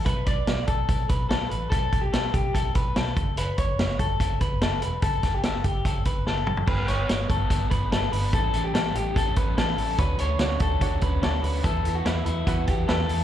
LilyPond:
<<
  \new Staff \with { instrumentName = "Clean electric guitar" } { \time 4/4 \key fis \phrygian \tempo 4 = 145 b'8 d''4 a'4 b'8 a'8 b'8 | a'8. g'16 a'8 g'8 a'8 b'8 a'4 | b'8 cis''4 a'4 b'8 a'8 b'8 | a'8. g'16 a'8 g'8 a'8 b'8 a'4 |
b'8 cis''4 a'4 b'8 a'8 b'8 | a'8. g'16 a'8 g'8 a'8 b'8 a'4 | b'8 cis''4 a'4 b'8 a'8 b'8 | a'8. fis'16 e'8 e'8 fis'8 g'8 a'4 | }
  \new Staff \with { instrumentName = "Reed electric piano" } { \time 4/4 \key fis \phrygian r1 | r1 | r1 | r1 |
r1 | r1 | <d' fis' cis''>8. r16 <d' fis' cis''>8. r16 <d' fis' cis''>8. r16 <d' fis' cis''>8. r16 | <e' a' b'>8. r16 <e' a' b'>8. r16 <e' a' b'>8. r16 <e' a' b'>8. r16 | }
  \new Staff \with { instrumentName = "Overdriven electric guitar" } { \time 4/4 \key fis \phrygian r1 | r1 | r1 | r1 |
<g b d' a'>8 <b d' a'>8 <g b d' a'>8 <b d' a'>8 <g b d' a'>8 <b d' a'>8 <g b d' a'>8 <b d' a'>8 | <a, e g a cis' a'>8 <g a cis' a'>8 <g a cis' a'>8 <g a cis' a'>8 <a, e g a cis' a'>8 <g a cis' a'>8 <g a cis' a'>8 <g a cis' a'>8 | <d fis a cis' a'>8 <a cis' a'>8 <fis a cis' a'>8 <a cis' a'>8 <d fis a cis' a'>8 <a cis' a'>8 <fis a cis' a'>8 <a cis' a'>8 | <e b e' a'>8 <b e' a'>8 <e b e' a'>8 <b e' a'>8 <e b e' a'>8 <b e' a'>8 <e b e' a'>8 <b e' a'>8 | }
  \new Staff \with { instrumentName = "Fingered electric bass" } { \clef bass \time 4/4 \key fis \phrygian b,,8 b,,8 b,,8 b,,8 b,,8 b,,8 b,,8 a,,8 | b,,8 b,,8 b,,8 b,,8 b,,8 b,,8 b,,8 fis,,8~ | fis,,8 fis,,8 fis,,8 fis,,8 fis,,8 fis,,8 fis,,8 e,,8 | fis,,8 fis,,8 fis,,8 fis,,8 fis,,8 fis,,8 fis,,8 fis,,8 |
g,,8 g,,8 g,,8 g,,8 g,,8 g,,8 g,,8 g,,8 | a,,8 a,,8 a,,8 a,,8 a,,8 a,,8 a,,8 a,,8 | d,8 d,8 d,8 d,8 d,8 d,8 d,8 d,8 | e,8 e,8 e,8 e,8 e,8 e,8 e,8 e,8 | }
  \new DrumStaff \with { instrumentName = "Drums" } \drummode { \time 4/4 <hh bd>8 <hh bd>8 <hh sn>8 <hh bd>8 <hh bd>8 <hh bd>8 <hh sn>8 hh8 | <hh bd>8 <hh bd>8 <hh sn>8 <hh bd>8 <hh bd>8 <hh bd>8 <hh sn>8 <hh bd>8 | hh8 <hh bd>8 <hh sn>8 <hh bd>8 <hh bd>8 <hh bd>8 <hh sn>8 hh8 | <hh bd>8 <hh bd sn>8 <hh sn>8 <hh bd>8 <hh bd>8 <hh bd>8 sn8 toml16 tomfh16 |
<cymc bd>8 <hh sn>8 <hh sn>8 <hh bd>8 <hh bd>8 <hh bd>8 <hh sn>8 hho8 | <hh bd>8 hh8 <hh sn>8 hh8 <hh bd>8 <hh bd>8 <hh sn>8 hho8 | <hh bd>8 hh8 <hh sn>8 <hh bd>8 <hh bd>8 <hh bd>8 <hh sn>8 hho8 | <hh bd>8 hh8 <hh sn>8 hh8 <hh bd>8 <hh bd>8 <hh sn>8 hho8 | }
>>